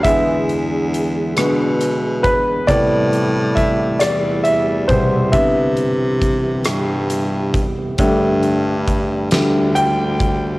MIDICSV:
0, 0, Header, 1, 5, 480
1, 0, Start_track
1, 0, Key_signature, 0, "major"
1, 0, Tempo, 883652
1, 24, Time_signature, 6, 3, 24, 8
1, 5752, End_track
2, 0, Start_track
2, 0, Title_t, "Tonewheel organ"
2, 0, Program_c, 0, 16
2, 0, Note_on_c, 0, 62, 43
2, 28, Note_on_c, 0, 59, 46
2, 28, Note_on_c, 0, 68, 54
2, 29, Note_on_c, 0, 52, 49
2, 29, Note_on_c, 0, 56, 42
2, 1434, Note_off_c, 0, 62, 0
2, 1445, Note_off_c, 0, 59, 0
2, 1445, Note_off_c, 0, 68, 0
2, 1446, Note_off_c, 0, 56, 0
2, 1458, Note_on_c, 0, 64, 50
2, 1459, Note_on_c, 0, 55, 47
2, 1460, Note_on_c, 0, 57, 50
2, 1460, Note_on_c, 0, 67, 55
2, 2880, Note_off_c, 0, 64, 0
2, 2881, Note_off_c, 0, 57, 0
2, 2903, Note_on_c, 0, 59, 49
2, 2904, Note_on_c, 0, 48, 48
2, 4316, Note_off_c, 0, 55, 0
2, 4318, Note_off_c, 0, 52, 0
2, 4327, Note_off_c, 0, 59, 0
2, 4328, Note_off_c, 0, 48, 0
2, 4345, Note_on_c, 0, 57, 52
2, 4346, Note_on_c, 0, 62, 49
2, 5752, Note_off_c, 0, 57, 0
2, 5752, Note_off_c, 0, 62, 0
2, 5752, Note_off_c, 0, 67, 0
2, 5752, End_track
3, 0, Start_track
3, 0, Title_t, "Grand piano"
3, 0, Program_c, 1, 0
3, 0, Control_c, 1, 64, 127
3, 17, Note_on_c, 1, 76, 89
3, 21, Note_on_c, 1, 50, 44
3, 22, Note_on_c, 1, 56, 43
3, 27, Note_on_c, 1, 59, 52
3, 30, Control_c, 1, 64, 0
3, 141, Control_c, 1, 64, 127
3, 719, Note_off_c, 1, 50, 0
3, 719, Note_off_c, 1, 56, 0
3, 722, Note_off_c, 1, 59, 0
3, 740, Note_on_c, 1, 50, 37
3, 743, Note_on_c, 1, 59, 41
3, 744, Note_on_c, 1, 56, 35
3, 958, Note_off_c, 1, 50, 0
3, 959, Note_off_c, 1, 59, 0
3, 960, Note_off_c, 1, 56, 0
3, 1212, Note_on_c, 1, 71, 72
3, 1251, Note_off_c, 1, 76, 0
3, 1437, Note_off_c, 1, 71, 0
3, 1452, Note_on_c, 1, 74, 85
3, 1455, Note_on_c, 1, 48, 47
3, 1457, Note_on_c, 1, 55, 46
3, 1460, Note_on_c, 1, 59, 52
3, 1465, Control_c, 1, 64, 0
3, 1544, Control_c, 1, 64, 127
3, 1930, Note_on_c, 1, 76, 76
3, 1948, Note_off_c, 1, 74, 0
3, 2152, Note_off_c, 1, 48, 0
3, 2154, Note_off_c, 1, 55, 0
3, 2155, Note_off_c, 1, 59, 0
3, 2156, Note_off_c, 1, 76, 0
3, 2170, Note_on_c, 1, 74, 68
3, 2410, Note_on_c, 1, 76, 80
3, 2420, Note_off_c, 1, 74, 0
3, 2635, Note_off_c, 1, 76, 0
3, 2649, Note_on_c, 1, 72, 68
3, 2650, Note_on_c, 1, 48, 42
3, 2652, Note_on_c, 1, 55, 42
3, 2656, Note_on_c, 1, 47, 49
3, 2870, Note_off_c, 1, 48, 0
3, 2871, Note_off_c, 1, 55, 0
3, 2873, Note_off_c, 1, 47, 0
3, 2890, Note_on_c, 1, 50, 46
3, 2891, Note_on_c, 1, 76, 78
3, 2895, Note_on_c, 1, 52, 47
3, 2897, Note_on_c, 1, 59, 48
3, 2899, Note_off_c, 1, 72, 0
3, 2901, Control_c, 1, 64, 0
3, 2999, Control_c, 1, 64, 127
3, 3210, Note_off_c, 1, 50, 0
3, 3213, Note_off_c, 1, 52, 0
3, 3214, Note_off_c, 1, 59, 0
3, 4073, Note_off_c, 1, 76, 0
3, 4339, Note_on_c, 1, 50, 48
3, 4342, Note_on_c, 1, 55, 43
3, 4345, Control_c, 1, 64, 0
3, 4345, Note_on_c, 1, 57, 56
3, 4430, Control_c, 1, 64, 127
3, 5056, Note_off_c, 1, 50, 0
3, 5057, Note_off_c, 1, 55, 0
3, 5061, Note_off_c, 1, 57, 0
3, 5064, Note_on_c, 1, 50, 40
3, 5065, Note_on_c, 1, 55, 36
3, 5069, Note_on_c, 1, 57, 42
3, 5281, Note_off_c, 1, 50, 0
3, 5281, Note_off_c, 1, 55, 0
3, 5284, Note_off_c, 1, 57, 0
3, 5297, Note_on_c, 1, 79, 87
3, 5752, Note_off_c, 1, 79, 0
3, 5752, End_track
4, 0, Start_track
4, 0, Title_t, "Baritone saxophone"
4, 0, Program_c, 2, 67
4, 23, Note_on_c, 2, 40, 92
4, 720, Note_off_c, 2, 40, 0
4, 739, Note_on_c, 2, 47, 76
4, 1289, Note_off_c, 2, 47, 0
4, 1459, Note_on_c, 2, 45, 97
4, 2155, Note_off_c, 2, 45, 0
4, 2179, Note_on_c, 2, 40, 79
4, 2874, Note_off_c, 2, 40, 0
4, 2897, Note_on_c, 2, 48, 86
4, 3594, Note_off_c, 2, 48, 0
4, 3614, Note_on_c, 2, 43, 82
4, 4169, Note_off_c, 2, 43, 0
4, 4338, Note_on_c, 2, 43, 88
4, 5039, Note_off_c, 2, 43, 0
4, 5062, Note_on_c, 2, 38, 83
4, 5752, Note_off_c, 2, 38, 0
4, 5752, End_track
5, 0, Start_track
5, 0, Title_t, "Drums"
5, 24, Note_on_c, 9, 36, 81
5, 26, Note_on_c, 9, 42, 75
5, 78, Note_off_c, 9, 36, 0
5, 80, Note_off_c, 9, 42, 0
5, 267, Note_on_c, 9, 42, 38
5, 322, Note_off_c, 9, 42, 0
5, 511, Note_on_c, 9, 42, 45
5, 565, Note_off_c, 9, 42, 0
5, 742, Note_on_c, 9, 42, 86
5, 748, Note_on_c, 9, 37, 99
5, 796, Note_off_c, 9, 42, 0
5, 802, Note_off_c, 9, 37, 0
5, 981, Note_on_c, 9, 42, 54
5, 986, Note_on_c, 9, 37, 27
5, 1035, Note_off_c, 9, 42, 0
5, 1041, Note_off_c, 9, 37, 0
5, 1219, Note_on_c, 9, 36, 70
5, 1223, Note_on_c, 9, 42, 39
5, 1273, Note_off_c, 9, 36, 0
5, 1278, Note_off_c, 9, 42, 0
5, 1458, Note_on_c, 9, 36, 83
5, 1460, Note_on_c, 9, 42, 73
5, 1513, Note_off_c, 9, 36, 0
5, 1514, Note_off_c, 9, 42, 0
5, 1700, Note_on_c, 9, 42, 39
5, 1754, Note_off_c, 9, 42, 0
5, 1938, Note_on_c, 9, 36, 67
5, 1941, Note_on_c, 9, 42, 43
5, 1942, Note_on_c, 9, 37, 28
5, 1993, Note_off_c, 9, 36, 0
5, 1996, Note_off_c, 9, 37, 0
5, 1996, Note_off_c, 9, 42, 0
5, 2174, Note_on_c, 9, 42, 89
5, 2179, Note_on_c, 9, 37, 102
5, 2228, Note_off_c, 9, 42, 0
5, 2234, Note_off_c, 9, 37, 0
5, 2416, Note_on_c, 9, 42, 55
5, 2470, Note_off_c, 9, 42, 0
5, 2655, Note_on_c, 9, 36, 70
5, 2661, Note_on_c, 9, 42, 41
5, 2709, Note_off_c, 9, 36, 0
5, 2715, Note_off_c, 9, 42, 0
5, 2894, Note_on_c, 9, 42, 69
5, 2895, Note_on_c, 9, 36, 89
5, 2948, Note_off_c, 9, 42, 0
5, 2950, Note_off_c, 9, 36, 0
5, 3132, Note_on_c, 9, 42, 37
5, 3187, Note_off_c, 9, 42, 0
5, 3376, Note_on_c, 9, 36, 67
5, 3377, Note_on_c, 9, 42, 44
5, 3431, Note_off_c, 9, 36, 0
5, 3431, Note_off_c, 9, 42, 0
5, 3610, Note_on_c, 9, 42, 91
5, 3615, Note_on_c, 9, 37, 107
5, 3664, Note_off_c, 9, 42, 0
5, 3670, Note_off_c, 9, 37, 0
5, 3856, Note_on_c, 9, 42, 57
5, 3861, Note_on_c, 9, 37, 26
5, 3910, Note_off_c, 9, 42, 0
5, 3916, Note_off_c, 9, 37, 0
5, 4096, Note_on_c, 9, 36, 73
5, 4100, Note_on_c, 9, 42, 43
5, 4151, Note_off_c, 9, 36, 0
5, 4154, Note_off_c, 9, 42, 0
5, 4336, Note_on_c, 9, 42, 76
5, 4339, Note_on_c, 9, 36, 90
5, 4390, Note_off_c, 9, 42, 0
5, 4393, Note_off_c, 9, 36, 0
5, 4578, Note_on_c, 9, 42, 39
5, 4633, Note_off_c, 9, 42, 0
5, 4822, Note_on_c, 9, 36, 68
5, 4823, Note_on_c, 9, 42, 46
5, 4877, Note_off_c, 9, 36, 0
5, 4878, Note_off_c, 9, 42, 0
5, 5059, Note_on_c, 9, 42, 93
5, 5064, Note_on_c, 9, 38, 104
5, 5113, Note_off_c, 9, 42, 0
5, 5119, Note_off_c, 9, 38, 0
5, 5300, Note_on_c, 9, 42, 57
5, 5355, Note_off_c, 9, 42, 0
5, 5542, Note_on_c, 9, 36, 70
5, 5547, Note_on_c, 9, 42, 41
5, 5596, Note_off_c, 9, 36, 0
5, 5601, Note_off_c, 9, 42, 0
5, 5752, End_track
0, 0, End_of_file